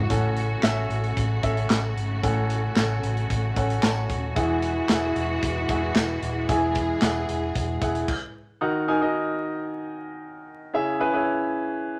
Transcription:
0.00 0.12 E4 medium
0.00 4.32 F#4 medium
0.00 0.12 G#4 medium
0.00 0.12 E5 medium
0.00 0.12 G#5 medium
0.10 0.54 A1 medium
0.10 0.86 A2 medium
0.10 4.32 C#3 medium
0.10 4.32 A3 medium
0.10 0.49 C#4 medium
0.10 0.49 A4 medium
0.10 0.49 F#5 medium
0.10 kick loud
0.10 closed hi-hat medium
0.36 closed hi-hat medium
0.63 0.85 A1 loud
0.63 1.21 C#4 medium
0.63 1.21 A4 medium
0.63 1.22 E5 medium
0.63 snare loud
0.63 clap medium
0.63 closed hi-hat medium
0.63 tambourine medium
0.90 1.12 A1 medium
0.90 closed hi-hat medium
1.04 closed hi-hat soft
1.17 1.39 A1 loud
1.17 kick medium
1.17 closed hi-hat medium
1.43 1.65 A1 medium
1.43 2.01 C#4 medium
1.43 2.01 A4 medium
1.43 2.01 E5 medium
1.43 kick medium
1.43 closed hi-hat medium
1.57 closed hi-hat medium
1.70 1.92 A1 loud
1.70 snare loud
1.70 clap medium
1.70 closed hi-hat medium
1.70 tambourine medium
1.96 2.18 G#1 medium
1.96 closed hi-hat medium
2.23 2.67 A1 loud
2.23 2.99 A2 medium
2.23 2.62 C#4 medium
2.23 2.62 A4 medium
2.23 2.62 F#5 medium
2.23 kick loud
2.23 closed hi-hat medium
2.50 closed hi-hat medium
2.76 2.98 A1 loud
2.76 3.34 C#4 medium
2.76 3.34 A4 medium
2.76 3.35 F#5 medium
2.76 snare loud
2.76 clap medium
2.76 closed hi-hat medium
2.76 tambourine medium
3.03 3.25 A1 medium
3.03 closed hi-hat medium
3.17 closed hi-hat soft
3.30 3.52 A1 loud
3.30 kick medium
3.30 closed hi-hat medium
3.56 3.78 A1 medium
3.56 4.14 C#4 medium
3.56 4.14 A4 medium
3.56 3.81 C#5 medium
3.56 4.15 F#5 medium
3.56 kick medium
3.56 closed hi-hat medium
3.70 closed hi-hat medium
3.83 4.32 A5 medium
3.83 snare loud
3.83 clap medium
3.83 closed hi-hat medium
3.83 tambourine medium
4.10 4.31 D#1 medium
4.10 kick loud
4.10 closed hi-hat medium
4.36 4.80 E1 loud
4.36 8.04 E3 medium
4.36 5.12 E3 medium
4.36 8.05 G#3 medium
4.36 4.75 E4 medium
4.36 6.47 F#4 medium
4.36 4.75 G#4 medium
4.36 4.75 F#5 medium
4.36 kick loud
4.36 closed hi-hat medium
4.62 closed hi-hat medium
4.89 5.11 E1 medium
4.89 5.47 E4 medium
4.89 5.47 G#4 medium
4.89 5.48 F#5 medium
4.89 snare loud
4.89 clap medium
4.89 closed hi-hat medium
4.89 tambourine medium
5.16 5.38 E1 loud
5.16 closed hi-hat medium
5.43 5.64 E1 loud
5.43 kick medium
5.43 closed hi-hat medium
5.69 5.91 E1 loud
5.69 6.27 E4 medium
5.69 6.27 G#4 medium
5.69 6.28 F#5 medium
5.69 kick loud
5.69 closed hi-hat medium
5.95 6.17 E1 medium
5.95 snare loud
5.95 clap medium
5.95 closed hi-hat medium
5.95 tambourine loud
6.22 6.44 D#1 medium
6.22 closed hi-hat medium
6.49 6.92 E1 loud
6.49 7.25 E3 medium
6.49 6.88 E4 medium
6.49 8.07 G#4 medium
6.49 6.88 G#4 medium
6.49 6.88 G#5 medium
6.49 kick loud
6.49 closed hi-hat loud
6.75 kick medium
6.75 closed hi-hat medium
7.02 7.24 E1 loud
7.02 7.60 E4 medium
7.02 7.60 G#4 medium
7.02 7.60 F#5 medium
7.02 snare loud
7.02 clap medium
7.02 closed hi-hat medium
7.02 tambourine medium
7.29 7.51 E1 loud
7.29 closed hi-hat medium
7.55 7.77 E1 loud
7.55 kick loud
7.55 closed hi-hat medium
7.81 8.03 E1 loud
7.81 8.08 E4 medium
7.81 8.08 G#4 medium
7.81 8.08 F#5 medium
7.81 kick medium
7.81 closed hi-hat medium
7.95 closed hi-hat medium
8.08 kick loud
8.08 crash medium
8.61 9.37 D#3 medium
8.61 8.81 D#4 medium
8.61 8.81 F#4 medium
8.61 8.81 A#4 medium
8.61 8.81 F#5 medium
8.88 8.98 D#4 medium
8.88 8.98 F#4 medium
8.88 8.98 A#4 medium
8.88 8.98 G#5 loud
9.01 9.78 D#4 medium
9.01 9.79 F#4 medium
9.01 9.79 A#4 medium
9.01 9.79 D#5 medium
10.73 11.50 C#3 medium
10.73 10.93 C#4 medium
10.73 10.93 E4 medium
10.73 10.93 G#4 medium
10.73 10.93 E5 medium
11.00 11.10 C#4 medium
11.00 11.10 E4 medium
11.00 11.10 G#4 medium
11.00 11.10 B4 loud
11.13 11.91 C#4 medium
11.13 11.91 E4 medium
11.13 11.91 G#4 medium
11.13 11.91 B4 medium

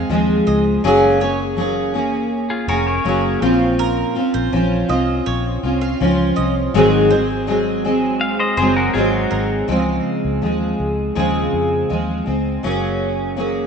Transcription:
0.09 0.40 D#2 medium
0.09 0.83 F3 medium
0.09 0.84 G#3 medium
0.09 0.84 C4 medium
0.09 0.84 G#4 medium
0.47 0.77 C#2 medium
0.47 0.64 D#5 medium
0.84 2.64 F#1 medium
0.84 1.21 F#3 medium
0.84 1.21 A#3 medium
0.84 1.20 C#4 medium
0.84 1.19 G#4 loud
1.20 1.56 A#3 soft
1.20 1.57 C#4 medium
1.20 1.57 G#4 medium
1.20 1.38 C#5 medium
1.57 1.94 F#3 medium
1.57 1.94 A#3 medium
1.57 1.94 C#4 medium
1.57 1.93 G#4 medium
1.94 2.69 A#3 medium
1.94 2.69 C#4 medium
1.94 2.67 G#4 medium
2.50 2.68 F4 medium
2.50 2.67 G#4 medium
2.68 2.98 F1 medium
2.68 3.04 A#3 soft
2.68 3.05 C#4 medium
2.68 2.86 F#4 medium
2.68 3.05 G#4 medium
2.68 2.86 A#4 medium
2.68 2.86 C#5 medium
2.87 3.40 A#4 medium
2.87 3.39 C#5 medium
3.05 3.35 F#1 medium
3.05 3.42 F#3 medium
3.05 3.42 A#3 medium
3.05 3.41 C#4 medium
3.05 3.42 G#4 medium
3.42 4.02 A#1 loud
3.42 4.16 A#2 medium
3.42 4.16 F3 medium
3.42 4.16 C4 medium
3.42 4.16 C#4 medium
3.42 4.14 F4 medium
3.42 3.60 C5 medium
3.79 4.14 A#4 loud
4.15 4.52 C4 medium
4.15 4.52 C#4 soft
4.15 4.52 F4 medium
4.34 4.49 A#1 medium
4.34 4.52 C5 medium
4.52 4.83 A#1 medium
4.52 4.89 F3 medium
4.52 4.88 C4 medium
4.52 4.89 C#4 medium
4.52 4.87 F4 medium
4.89 5.20 C2 medium
4.89 5.64 C4 soft
4.89 5.64 C#4 soft
4.89 5.62 F4 medium
4.89 5.24 D#5 medium
5.26 5.57 A#1 medium
5.26 5.44 C#5 medium
5.63 5.94 C2 medium
5.63 6.00 C4 medium
5.63 6.00 C#4 soft
5.63 6.00 F4 medium
5.81 5.99 F5 medium
6.00 6.31 C#2 medium
6.00 6.74 F3 medium
6.00 6.75 C4 medium
6.00 6.74 C#4 medium
6.00 6.75 F4 medium
6.36 6.68 C2 medium
6.36 6.54 D#5 medium
6.74 8.54 G#1 medium
6.74 7.11 G#2 medium
6.74 7.11 D#3 medium
6.74 7.11 F#3 medium
6.74 7.10 G#3 medium
6.74 7.10 C4 medium
6.74 7.09 G#4 medium
7.10 7.46 F#3 soft
7.10 7.47 G#3 medium
7.10 7.47 C4 soft
7.10 7.47 G#4 medium
7.10 7.28 C5 medium
7.47 7.84 F#3 medium
7.47 7.85 G#3 medium
7.47 7.84 C4 medium
7.47 7.83 G#4 medium
7.85 8.59 F#3 soft
7.85 8.59 G#3 medium
7.85 8.59 C4 medium
7.85 8.58 G#4 medium
8.21 8.39 F5 medium
8.39 8.56 C5 medium
8.39 8.57 D#5 medium
8.57 8.88 F#1 medium
8.57 8.93 F#3 soft
8.57 8.94 G#3 medium
8.57 8.94 C4 medium
8.57 8.75 G#4 medium
8.57 8.95 G#4 medium
8.57 8.75 C5 medium
8.77 8.93 F#4 medium
8.77 8.94 A#4 medium
8.94 9.25 G#1 medium
8.94 9.68 F#3 medium
8.94 9.68 G#3 medium
8.94 9.68 C4 medium
8.94 9.12 F4 medium
8.94 9.12 G#4 medium
8.94 9.69 G#4 medium
9.12 9.66 D#4 medium
9.12 9.65 F#4 medium
9.31 9.62 G#1 medium
9.31 9.49 A#4 medium
9.68 9.99 C#2 medium
9.68 10.42 C#3 medium
9.68 10.40 F3 medium
9.68 10.42 G#3 medium
9.68 10.42 C4 medium
9.68 10.43 G#4 medium
10.25 10.39 C#2 medium
10.41 10.73 D#2 medium
10.41 11.14 F3 soft
10.41 11.16 G#3 medium
10.41 11.15 C4 medium
10.41 11.16 G#4 medium
10.80 11.10 C#2 medium
11.15 11.46 D#2 medium
11.15 11.90 C#3 medium
11.15 11.88 F3 medium
11.15 11.90 G#3 medium
11.15 11.89 C4 medium
11.15 11.91 G#4 medium
11.53 11.83 F2 medium
11.90 12.21 D#2 medium
11.90 12.27 F3 medium
11.90 12.26 G#3 medium
11.90 12.26 C4 medium
11.90 12.25 G#4 medium
12.26 12.57 C#2 medium
12.26 12.63 G#3 soft
12.26 12.64 C4 soft
12.26 12.63 G#4 soft
12.63 13.67 F#1 medium
12.63 13.35 F#3 medium
12.63 13.37 A#3 medium
12.63 13.37 C#4 medium
12.63 13.37 G#4 medium
13.36 13.67 F#3 medium
13.36 13.67 A#3 medium
13.36 13.67 C#4 medium
13.36 13.67 G#4 medium

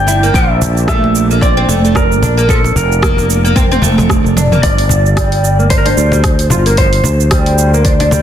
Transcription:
0.00 0.30 G1 medium
0.00 4.64 D4 medium
0.00 4.64 D5 medium
0.00 0.36 G5 loud
0.07 0.22 E4 medium
0.07 cajon slap medium
0.07 cabasa medium
0.23 0.34 A#3 medium
0.23 cabasa soft
0.34 1.64 A#1 loud
0.34 0.43 F3 medium
0.34 0.88 E5 medium
0.34 kick loud
0.34 cabasa soft
0.62 cajon bass medium
0.62 cabasa medium
0.77 cabasa soft
0.88 1.29 A3 medium
0.88 1.44 E5 medium
0.88 kick medium
0.88 cross-stick medium
0.88 cabasa soft
1.04 cajon slap medium
1.15 cabasa medium
1.31 1.41 A#3 medium
1.31 cabasa soft
1.41 1.51 C4 medium
1.41 1.97 D5 medium
1.41 kick loud
1.41 cabasa soft
1.57 1.67 C4 loud
1.69 2.22 F1 medium
1.69 1.83 A3 medium
1.69 cajon slap medium
1.69 cabasa medium
1.85 1.95 A3 medium
1.85 cabasa soft
1.95 2.50 A#4 medium
1.95 kick loud
1.95 cross-stick medium
1.95 cabasa soft
2.12 cabasa soft
2.22 2.71 A#1 medium
2.22 2.37 D4 medium
2.22 cajon bass medium
2.22 cabasa medium
2.37 2.48 A#3 medium
2.37 cabasa soft
2.49 2.57 F3 medium
2.49 2.76 A4 loud
2.49 kick loud
2.49 cabasa soft
2.64 cajon slap medium
2.64 cabasa soft
2.76 3.82 F1 medium
2.76 4.33 A#4 medium
2.76 cajon bass medium
2.76 cabasa medium
2.92 cabasa soft
3.02 3.43 A#3 medium
3.02 kick medium
3.02 cross-stick loud
3.02 cabasa soft
3.18 cajon slap medium
3.18 cabasa soft
3.30 cabasa medium
3.45 3.55 A#3 medium
3.45 cabasa soft
3.56 3.65 C4 loud
3.56 kick loud
3.56 high tom medium
3.56 cabasa soft
3.71 3.82 C4 medium
3.71 high tom medium
3.71 cabasa soft
3.82 4.19 F1 loud
3.82 3.97 A3 medium
3.82 cajon bass medium
3.82 cabasa medium
3.98 4.09 A3 medium
3.98 cajon bass medium
3.98 cross-stick soft
3.98 mid tom medium
3.98 cabasa soft
4.10 kick medium
4.10 cross-stick medium
4.10 mid tom medium
4.10 cabasa soft
4.24 4.59 F1 loud
4.24 cabasa soft
4.37 4.51 D4 medium
4.37 cajon slap medium
4.37 mid tom medium
4.37 cabasa medium
4.52 4.63 A#3 medium
4.52 mid tom medium
4.52 cabasa soft
4.63 5.93 G1 loud
4.63 4.72 F3 loud
4.63 5.70 D5 loud
4.63 kick loud
4.63 open hi-hat medium
4.63 cabasa soft
4.78 open hi-hat soft
4.89 cajon bass medium
4.89 cajon slap medium
4.89 cabasa medium
5.06 cabasa soft
5.17 5.57 G3 medium
5.17 kick loud
5.17 cross-stick loud
5.17 open hi-hat medium
5.17 cabasa soft
5.32 open hi-hat soft
5.44 cabasa medium
5.59 5.70 A#3 medium
5.59 cabasa soft
5.70 5.79 D4 medium
5.70 5.77 C5 medium
5.70 kick loud
5.70 open hi-hat medium
5.70 cabasa soft
5.78 5.86 A#4 medium
5.85 5.96 D4 loud
5.85 6.73 C5 medium
5.85 cajon slap medium
5.85 open hi-hat soft
5.97 6.52 D2 medium
5.97 6.12 G3 medium
5.97 cabasa medium
6.12 6.23 G3 medium
6.12 cajon slap medium
6.12 cabasa soft
6.24 kick loud
6.24 cross-stick medium
6.24 open hi-hat medium
6.24 cabasa soft
6.39 open hi-hat soft
6.39 cabasa soft
6.50 7.00 G1 loud
6.50 6.65 F4 medium
6.50 cajon bass medium
6.50 cajon slap medium
6.50 cabasa medium
6.66 6.77 A#3 medium
6.66 open hi-hat soft
6.66 cabasa soft
6.77 6.86 F3 medium
6.77 8.22 C5 medium
6.77 kick loud
6.77 open hi-hat medium
6.77 cabasa soft
6.93 open hi-hat soft
7.04 8.22 D2 loud
7.04 cajon bass medium
7.04 cajon slap medium
7.04 cabasa medium
7.20 cabasa soft
7.31 7.72 G3 medium
7.31 kick loud
7.31 cross-stick loud
7.31 open hi-hat medium
7.31 cabasa soft
7.46 open hi-hat soft
7.58 cabasa medium
7.74 7.84 A#3 medium
7.74 cabasa soft
7.85 7.93 D4 medium
7.85 kick loud
7.85 open hi-hat medium
7.85 cabasa soft
8.00 8.10 D4 loud
8.00 cajon slap medium
8.00 open hi-hat soft
8.11 8.22 G3 medium
8.11 cajon bass medium
8.11 cajon slap medium
8.11 cabasa medium

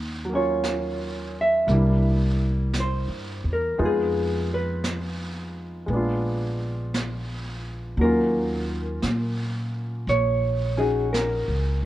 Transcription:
0.00 1.64 D#2 medium
0.25 1.67 F#3 soft
0.29 1.68 A#3 soft
0.33 1.71 C#4 soft
0.33 1.72 F4 soft
0.33 1.40 C#5 medium
0.64 brush sweep soft
0.64 snare soft
0.64 hi-hat pedal soft
1.41 2.80 E5 medium
1.67 3.04 C2 medium
1.67 3.78 G3 soft
1.67 3.79 A#3 soft
1.67 3.79 D4 soft
1.67 brush sweep soft
1.67 snare soft
1.73 3.81 E4 soft
2.74 brush sweep soft
2.74 snare soft
2.74 hi-hat pedal soft
2.80 3.49 C5 medium
3.08 3.41 G2 soft
3.44 3.77 E2 medium
3.53 3.84 A#4 medium
3.78 5.85 F2 medium
3.78 5.85 G#3 soft
3.78 5.88 B3 soft
3.78 5.89 D#4 soft
3.78 5.89 F4 soft
3.78 brush sweep soft
3.86 4.54 G#4 medium
4.54 5.87 B4 medium
4.84 brush sweep soft
4.84 snare soft
4.84 hi-hat pedal soft
5.86 7.94 A#1 medium
5.86 7.97 G#3 soft
5.86 7.99 B3 soft
5.86 brush sweep soft
5.93 8.00 D4 soft
5.93 8.02 F4 soft
6.94 brush sweep soft
6.94 snare soft
6.94 hi-hat pedal soft
7.97 8.99 D#2 medium
7.97 11.85 F#3 soft
7.97 brush sweep soft
8.01 11.85 A#3 soft
8.01 10.76 C#4 soft
8.01 11.85 F4 soft
8.01 10.16 A#4 medium
9.02 10.04 A#2 medium
9.02 brush sweep soft
9.02 snare soft
9.02 hi-hat pedal soft
10.07 11.44 A#1 medium
10.07 10.81 C#5 medium
10.07 brush sweep soft
10.07 snare soft
10.77 11.85 C#4 soft
10.77 11.85 D#4 soft
10.77 11.85 F#4 soft
10.77 11.12 G#4 medium
11.13 11.79 A#4 medium
11.13 brush sweep soft
11.13 snare soft
11.13 hi-hat pedal soft
11.48 11.81 C#2 medium

